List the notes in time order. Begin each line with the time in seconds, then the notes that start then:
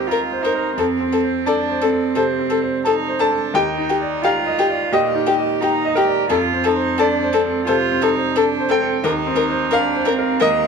Already playing: D#2 C4 A#4 C5 D#5 F5 G5 A#5
0.07 F4 A#5
0.11 A#4
0.32 C5
0.42 D#4 A#4 C5
0.55 A#4
0.77 F2 C4 A4
1.00 C4
1.12 A4
1.24 C5
1.46 D4 A4 D5 A5
1.70 C5
1.82 C4 A4
1.92 A4
2.15 C3 A4 C5
2.39 C4
2.50 A4
2.62 C5
2.85 D#4 A4 A5
3.08 C5
3.19 D4 A4 A5
3.31 A4
3.54 D#2 D#4 G4 G5
3.78 D#4
3.89 G4
4.01 D5
4.23 F4 G4 F5 A#5
4.47 D#5
4.59 G4
4.70 D5
4.92 A#2 G4 D#5
5.15 D#4
5.26 G4
5.39 D#5
5.61 D#4 G4 A#5
5.85 D#5
5.95 G4 A#4
6.07 D5
6.30 F2 F4 A4
6.53 C4
6.64 D#4 A4
6.76 C5
6.98 D4 A4 D5 A5
7.23 C5
7.33 C4 A4
7.46 A4
7.67 C3 F4 A4 C5
7.92 C4
8.02 D#4 A4
8.16 C5
8.36 D4 A4 A5
8.60 C5
8.69 C4 A4 G5
8.82 A4
9.04 D#2 D#4 A#4
9.27 C4
9.36 A#4
9.50 C5
9.71 D4 A#4 F5 A#5
9.96 C5
10.05 A#4
10.09 C4
10.19 A#4
10.40 D#2 A#3 A#4 D#5